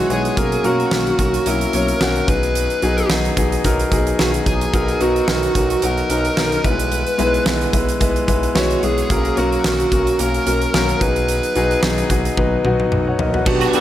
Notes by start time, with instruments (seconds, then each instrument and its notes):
Already playing: grand piano G#3 B3 E4 F#4 B4 C#5
0.09 analog synth bass B1, grand piano G#3 B3 E4 C#5, lead electric guitar G#4, closed hi-hat
0.25 closed hi-hat
0.36 analog synth bass B1, grand piano F#3 A#3 C#4 A#4, kick, closed hi-hat
0.52 closed hi-hat
0.64 analog synth bass B1, grand piano F#3 A#3 C#4 A#4, lead electric guitar F#4, closed hi-hat
0.80 closed hi-hat
0.91 analog synth bass B1, grand piano F#3 A#3 C#4 A#4, snare
1.07 closed hi-hat
1.18 analog synth bass B1, grand piano F#3 A#3 C#4 A#4, kick, closed hi-hat
1.34 closed hi-hat
1.46 analog synth bass B1, grand piano F#3 A#3 C#4 E4, lead electric guitar A#4, closed hi-hat
1.61 closed hi-hat
1.73 analog synth bass B1, grand piano F#3 A#3 C#4 C#5, closed hi-hat
1.88 closed hi-hat
2.00 analog synth bass B1, grand piano F#3 A#3 C#4 F#4, snare
2.16 closed hi-hat
2.27 analog synth bass B1, grand piano F#3 B3 D#4 G#4, lead electric guitar B4, kick, closed hi-hat
2.43 closed hi-hat
2.55 closed hi-hat
2.70 closed hi-hat
2.82 analog synth bass B1, grand piano F#3 B3 D#4 G#4, closed hi-hat
2.98 closed hi-hat
3.10 analog synth bass B1, grand piano F#3 B3 D#4 G#4, snare
3.25 closed hi-hat
3.36 analog synth bass B1, grand piano F#3 B3 D#4 G#4, kick, closed hi-hat
3.52 closed hi-hat
3.64 analog synth bass B1, grand piano F#3 B3 D#4 A#4, kick, closed hi-hat
3.79 closed hi-hat
3.91 analog synth bass B1, grand piano F#3 B3 D#4 G#4, kick, closed hi-hat
4.07 closed hi-hat
4.19 analog synth bass B1, grand piano F#3 B3 D#4 G#4, lead electric guitar F#4, snare
4.34 closed hi-hat
4.46 analog synth bass B1, grand piano F#3 B3 D#4, lead electric guitar G#4, kick, closed hi-hat
4.61 closed hi-hat
4.73 analog synth bass B1, grand piano F#3 B3 D#4 A#4, kick, closed hi-hat
4.88 closed hi-hat
5.01 analog synth bass B1, grand piano F#3 B3 D#4 A#4, lead electric guitar F#4, closed hi-hat
5.16 closed hi-hat
5.28 analog synth bass B1, grand piano F#3 B3 D#4 A#4, snare
5.43 closed hi-hat
5.55 analog synth bass B1, grand piano F#3 B3 D#4 A#4, kick, closed hi-hat
5.70 closed hi-hat
5.82 analog synth bass B1, grand piano F#3 B3 D#4 F#4, lead electric guitar A#4, closed hi-hat
5.98 closed hi-hat
6.10 analog synth bass B1, grand piano F#3 B3 D#4 A#4, closed hi-hat
6.25 closed hi-hat
6.37 analog synth bass B1, grand piano F#3 B3 D#4 A#4, snare
6.52 closed hi-hat
6.64 analog synth bass B1, grand piano G3 B3 E4 B4, lead electric guitar B4, kick, closed hi-hat
6.70 grand piano G#3
6.79 closed hi-hat
6.92 closed hi-hat
7.07 closed hi-hat
7.18 analog synth bass B1, grand piano G#3 B3 E4 B4, closed hi-hat
7.34 closed hi-hat
7.45 analog synth bass B1, grand piano G#3 B3 E4 B4, snare
7.61 closed hi-hat
7.73 analog synth bass B1, grand piano G#3 B3 E4 B4, kick, closed hi-hat
7.89 closed hi-hat
8.00 analog synth bass B1, grand piano G#3 B3 E4 B4, kick, closed hi-hat
8.16 closed hi-hat
8.27 analog synth bass B1, grand piano G#3 B3 E4 B4, kick, closed hi-hat
8.43 closed hi-hat
8.55 analog synth bass B1, grand piano G#3 B3 E4 C#5, lead electric guitar F#4, snare
8.71 closed hi-hat
8.82 analog synth bass B1, grand piano G#3 B3 E4 G#4, lead electric guitar G#4, closed hi-hat
8.98 closed hi-hat
9.10 analog synth bass B1, grand piano F#3 A#3 C#4 A#4, kick, closed hi-hat
9.25 closed hi-hat
9.37 analog synth bass B1, grand piano F#3 A#3 C#4 A#4, lead electric guitar F#4, closed hi-hat
9.52 closed hi-hat
9.64 analog synth bass B1, grand piano F#3 A#3 C#4 A#4, snare
9.80 closed hi-hat
9.92 analog synth bass B1, grand piano F#3 A#3 C#4 A#4, kick, closed hi-hat
10.07 closed hi-hat
10.19 analog synth bass B1, grand piano F#3 A#3 C#4 A#4, lead electric guitar A#4, closed hi-hat
10.34 closed hi-hat
10.46 analog synth bass B1, grand piano F#3 A#3 C#4 A#4, closed hi-hat
10.62 closed hi-hat
10.74 analog synth bass B1, grand piano F#3 A#3 C#4 A#4, snare
10.89 closed hi-hat
11.01 analog synth bass B1, grand piano F#3 B3 D#4 G#4, lead electric guitar B4, kick, closed hi-hat
11.16 closed hi-hat
11.28 closed hi-hat
11.43 closed hi-hat
11.55 analog synth bass B1, grand piano F#3 B3 D#4 G#4, closed hi-hat
11.71 closed hi-hat
11.82 analog synth bass B1, grand piano F#3 B3 D#4 G#4, snare
11.98 closed hi-hat
12.10 analog synth bass B1, grand piano F#3 B3 D#4 G#4, kick, closed hi-hat
12.25 closed hi-hat
12.37 analog synth bass B1, grand piano F#3 B3 D#4 B4, kick, high tom
12.64 analog synth bass B1, grand piano F#3 B3 D#4 F#4, mid tom
12.80 mid tom
12.92 analog synth bass B1, mid tom
13.07 grand piano C#5 F#5
13.19 analog synth bass B1, grand piano A#4 D#5, floor tom
13.34 grand piano F#4 B4, floor tom
13.46 analog synth bass B1, grand piano F#3 B3 D4 G4, lead electric guitar F#4, string machine B4 F#5 G5 D6, muted clean electric guitar stroke, kick, crash
13.61 clean electric guitar F#3 B3 D4 F#4, closed hi-hat
13.73 grand piano F#3 B3 D4 G4, clean electric guitar F#3 B3 D4 F#4, lead electric guitar A4, closed hi-hat